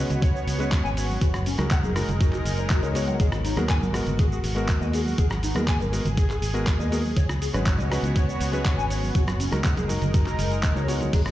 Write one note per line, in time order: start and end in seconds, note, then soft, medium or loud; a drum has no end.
0.00 0.56 G#3 medium
0.00 1.19 B3 medium
0.00 0.56 C#4 medium
0.00 0.57 F#4 medium
0.00 1.18 F#4 medium
0.00 0.57 B4 medium
0.00 1.20 C#5 medium
0.10 0.43 C#2 medium
0.10 closed hi-hat medium
0.10 low conga medium
0.10 cabasa soft
0.21 0.28 C#5 medium
0.21 kick loud
0.21 closed hi-hat medium
0.21 cabasa soft
0.34 0.38 C#5 medium
0.34 cabasa soft
0.47 0.80 C#2 medium
0.47 open hi-hat loud
0.47 cabasa medium
0.59 1.19 G#3 medium
0.59 1.20 C#4 medium
0.59 1.20 F#4 medium
0.59 1.20 B4 loud
0.59 closed hi-hat soft
0.59 muted conga medium
0.59 cabasa soft
0.72 kick loud
0.72 clap loud
0.72 closed hi-hat medium
0.72 cabasa soft
0.84 1.17 G#1 loud
0.84 0.90 G#5 medium
0.84 cabasa soft
0.97 1.06 C#5 medium
0.97 open hi-hat loud
0.97 cabasa medium
1.10 high conga medium
1.10 cabasa soft
1.21 1.54 F#1 loud
1.21 3.18 G#3 medium
1.21 3.18 D#4 medium
1.21 1.28 F#4 medium
1.21 3.18 A#4 medium
1.21 kick loud
1.21 closed hi-hat medium
1.21 cabasa soft
1.34 cross-stick medium
1.34 muted conga medium
1.34 cabasa soft
1.46 1.56 C#4 medium
1.46 open hi-hat loud
1.46 cabasa medium
1.58 1.85 C#2 medium
1.58 1.66 G#3 medium
1.58 1.66 D#4 medium
1.58 1.67 F#4 medium
1.58 1.65 F#4 medium
1.58 1.67 A#4 medium
1.58 cross-stick medium
1.58 closed hi-hat soft
1.58 high conga loud
1.58 cabasa soft
1.71 1.78 F#5 medium
1.71 kick loud
1.71 clap loud
1.71 closed hi-hat medium
1.71 cabasa soft
1.83 2.03 F#1 medium
1.83 1.93 G#4 medium
1.83 muted conga medium
1.83 high conga medium
1.83 cabasa soft
1.95 2.08 G#3 medium
1.95 2.09 D#4 medium
1.95 2.09 F#4 medium
1.95 2.09 A#4 medium
1.95 cross-stick medium
1.95 open hi-hat medium
1.95 cabasa medium
2.08 2.41 F#1 medium
2.08 closed hi-hat medium
2.08 low conga medium
2.08 cabasa soft
2.21 2.27 F#4 medium
2.21 kick loud
2.21 closed hi-hat medium
2.21 cabasa soft
2.33 2.37 F#4 medium
2.33 clap soft
2.33 cabasa soft
2.45 2.78 F#1 medium
2.45 open hi-hat loud
2.45 cabasa medium
2.58 2.64 C#5 medium
2.58 closed hi-hat soft
2.58 cabasa soft
2.70 2.80 F#4 medium
2.70 kick loud
2.70 clap loud
2.70 closed hi-hat medium
2.70 cabasa soft
2.82 3.15 C#2 loud
2.82 2.92 G#3 medium
2.82 2.92 D#4 medium
2.82 2.92 F#4 medium
2.82 2.92 A#4 medium
2.82 2.92 C#5 medium
2.82 closed hi-hat soft
2.82 muted conga soft
2.82 cabasa soft
2.94 3.53 G#3 medium
2.94 3.54 B3 medium
2.94 3.54 F#4 medium
2.94 3.01 C#5 medium
2.94 3.54 C#5 medium
2.94 open hi-hat loud
2.94 cabasa medium
3.07 3.14 F#5 medium
3.07 closed hi-hat soft
3.07 high conga medium
3.07 cabasa soft
3.19 3.53 G#1 loud
3.19 5.16 F#4 medium
3.19 3.26 G#4 medium
3.19 kick loud
3.19 closed hi-hat medium
3.19 cabasa soft
3.32 cross-stick medium
3.32 muted conga medium
3.32 cabasa soft
3.44 3.54 D#4 medium
3.44 open hi-hat loud
3.44 cabasa medium
3.56 3.83 D#2 medium
3.56 3.91 G#3 medium
3.56 3.91 B3 medium
3.56 3.91 F#4 medium
3.56 3.63 G#4 medium
3.56 3.92 A#4 medium
3.56 cross-stick medium
3.56 closed hi-hat medium
3.56 high conga loud
3.56 cabasa soft
3.69 3.76 G#5 medium
3.69 kick loud
3.69 clap loud
3.69 closed hi-hat medium
3.69 cabasa soft
3.81 4.01 G#1 medium
3.81 3.91 A#4 medium
3.81 muted conga medium
3.81 high conga medium
3.81 cabasa soft
3.93 4.53 G#3 medium
3.93 4.53 B3 medium
3.93 4.53 F#4 medium
3.93 4.54 A#4 medium
3.93 cross-stick medium
3.93 open hi-hat medium
3.93 cabasa medium
4.06 4.39 G#1 medium
4.06 closed hi-hat medium
4.06 low conga medium
4.06 cabasa soft
4.19 4.25 G#4 medium
4.19 kick loud
4.19 closed hi-hat medium
4.19 cabasa soft
4.32 4.35 G#4 medium
4.32 cabasa soft
4.44 4.77 G#1 medium
4.44 open hi-hat loud
4.44 cabasa medium
4.55 5.52 G#3 medium
4.55 5.52 B3 medium
4.55 5.52 F#4 medium
4.55 5.53 A#4 medium
4.55 closed hi-hat soft
4.55 muted conga medium
4.55 cabasa soft
4.68 kick loud
4.68 clap loud
4.68 closed hi-hat medium
4.68 cabasa soft
4.81 5.14 D#2 loud
4.81 4.87 D#5 medium
4.81 cabasa soft
4.93 5.03 G#4 medium
4.93 open hi-hat medium
4.93 cabasa medium
5.06 high conga medium
5.06 cabasa soft
5.18 5.51 G#1 loud
5.18 7.14 G#4 medium
5.18 5.25 G#4 medium
5.18 kick loud
5.18 closed hi-hat medium
5.18 cabasa soft
5.30 cross-stick medium
5.30 muted conga medium
5.30 cabasa soft
5.43 5.52 D#4 medium
5.43 open hi-hat loud
5.43 cabasa medium
5.55 5.82 D#2 medium
5.55 5.63 G#3 medium
5.55 5.63 B3 medium
5.55 5.63 F#4 medium
5.55 5.62 G#4 medium
5.55 5.64 A#4 medium
5.55 cross-stick medium
5.55 closed hi-hat soft
5.55 high conga loud
5.55 cabasa soft
5.68 5.74 G#5 medium
5.68 kick loud
5.68 clap loud
5.68 closed hi-hat medium
5.68 cabasa soft
5.80 6.00 G#1 medium
5.80 5.90 A#4 medium
5.80 muted conga medium
5.80 high conga medium
5.80 cabasa soft
5.92 6.05 G#3 medium
5.92 6.05 B3 medium
5.92 6.05 F#4 medium
5.92 6.06 A#4 medium
5.92 open hi-hat medium
5.92 cabasa medium
6.05 6.38 G#1 medium
6.05 closed hi-hat medium
6.05 low conga medium
6.05 cabasa soft
6.17 6.24 G#4 medium
6.17 kick loud
6.17 closed hi-hat medium
6.17 cabasa soft
6.30 6.34 G#4 medium
6.30 clap soft
6.30 cabasa soft
6.42 6.75 G#1 medium
6.42 open hi-hat loud
6.42 cabasa medium
6.54 6.88 G#3 medium
6.54 6.88 B3 medium
6.54 6.88 F#4 medium
6.54 6.89 A#4 medium
6.54 closed hi-hat soft
6.54 cabasa soft
6.67 kick loud
6.67 clap loud
6.67 closed hi-hat medium
6.67 cabasa soft
6.79 7.12 D#2 loud
6.79 6.85 D#5 medium
6.79 muted conga soft
6.79 cabasa soft
6.91 6.99 G#3 medium
6.91 7.00 B3 medium
6.91 7.00 F#4 medium
6.91 7.01 G#4 medium
6.91 7.00 A#4 medium
6.91 open hi-hat medium
6.91 cabasa medium
7.05 high conga medium
7.05 cabasa soft
7.16 7.49 C#2 loud
7.16 9.13 B3 medium
7.16 9.13 F#4 medium
7.16 9.13 C#5 medium
7.16 7.23 C#5 medium
7.16 kick loud
7.16 closed hi-hat medium
7.16 cabasa soft
7.29 cross-stick medium
7.29 muted conga medium
7.29 cabasa soft
7.41 7.51 G#4 medium
7.41 open hi-hat loud
7.41 cabasa medium
7.53 7.80 G#1 medium
7.53 7.88 G#3 medium
7.53 7.88 C#4 medium
7.53 7.88 F#4 medium
7.53 7.88 B4 medium
7.53 7.60 C#5 medium
7.53 cross-stick medium
7.53 closed hi-hat medium
7.53 high conga medium
7.53 cabasa soft
7.65 7.72 C#6 medium
7.65 kick loud
7.65 clap loud
7.65 closed hi-hat medium
7.65 cabasa soft
7.78 7.98 C#2 medium
7.78 7.88 D#5 medium
7.78 muted conga medium
7.78 high conga medium
7.78 cabasa soft
7.90 8.49 G#3 medium
7.90 8.50 C#4 medium
7.90 8.50 F#4 medium
7.90 8.51 B4 medium
7.90 cross-stick medium
7.90 open hi-hat medium
7.90 cabasa medium
8.03 8.36 C#2 medium
8.03 closed hi-hat medium
8.03 low conga medium
8.03 cabasa soft
8.15 8.22 C#5 medium
8.15 kick loud
8.15 closed hi-hat medium
8.15 cabasa soft
8.28 8.32 C#5 medium
8.28 cabasa soft
8.40 8.73 C#2 medium
8.40 open hi-hat loud
8.40 cabasa medium
8.52 9.13 G#3 medium
8.52 9.13 C#4 medium
8.52 9.13 F#4 medium
8.52 9.14 B4 loud
8.52 closed hi-hat soft
8.52 muted conga medium
8.52 cabasa soft
8.65 kick loud
8.65 clap loud
8.65 closed hi-hat medium
8.65 cabasa soft
8.77 9.11 G#1 loud
8.77 8.84 G#5 medium
8.77 cabasa soft
8.90 8.99 C#5 medium
8.90 open hi-hat medium
8.90 cabasa medium
9.03 high conga medium
9.03 cabasa soft
9.15 9.48 F#1 loud
9.15 11.11 G#3 medium
9.15 11.11 D#4 medium
9.15 9.21 F#4 medium
9.15 11.11 A#4 medium
9.15 kick loud
9.15 closed hi-hat medium
9.15 cabasa soft
9.27 cross-stick medium
9.27 closed hi-hat soft
9.27 muted conga medium
9.27 cabasa soft
9.40 9.49 C#4 medium
9.40 open hi-hat loud
9.40 cabasa medium
9.51 9.79 C#2 medium
9.51 9.60 G#3 medium
9.51 9.60 D#4 medium
9.51 9.58 F#4 medium
9.51 9.60 F#4 medium
9.51 9.60 A#4 medium
9.51 cross-stick medium
9.51 closed hi-hat medium
9.51 high conga medium
9.51 cabasa soft
9.64 9.70 F#5 medium
9.64 kick loud
9.64 clap loud
9.64 closed hi-hat medium
9.64 cabasa soft
9.76 9.97 F#1 medium
9.76 9.86 G#4 medium
9.76 closed hi-hat soft
9.76 muted conga medium
9.76 high conga medium
9.76 cabasa soft
9.88 10.02 G#3 medium
9.88 10.02 D#4 medium
9.88 10.02 F#4 medium
9.88 10.02 A#4 medium
9.88 open hi-hat medium
9.88 cabasa medium
10.02 10.35 F#1 medium
10.02 closed hi-hat medium
10.02 low conga medium
10.02 cabasa soft
10.14 10.20 F#4 medium
10.14 kick loud
10.14 closed hi-hat medium
10.14 cabasa soft
10.26 10.30 F#4 medium
10.26 clap soft
10.26 cabasa soft
10.39 10.72 F#1 medium
10.39 open hi-hat loud
10.39 cabasa medium
10.52 closed hi-hat soft
10.52 cabasa soft
10.63 kick loud
10.63 clap loud
10.63 closed hi-hat medium
10.63 cabasa soft
10.75 11.09 C#2 medium
10.75 10.85 G#3 medium
10.75 10.85 D#4 medium
10.75 10.85 F#4 medium
10.75 10.82 C#5 medium
10.75 10.85 C#5 medium
10.75 muted conga soft
10.75 cabasa soft
10.87 11.31 G#3 medium
10.87 11.31 B3 medium
10.87 11.31 F#4 medium
10.87 10.98 F#4 medium
10.87 11.31 C#5 medium
10.87 open hi-hat medium
10.87 cabasa medium
11.01 closed hi-hat soft
11.01 high conga medium
11.01 low conga medium
11.01 cabasa soft
11.13 11.31 G#1 loud
11.13 11.31 F#4 medium
11.13 11.20 G#4 medium
11.13 kick loud
11.13 closed hi-hat medium
11.13 crash medium
11.13 cabasa soft
11.26 cross-stick medium
11.26 muted conga medium
11.26 cabasa soft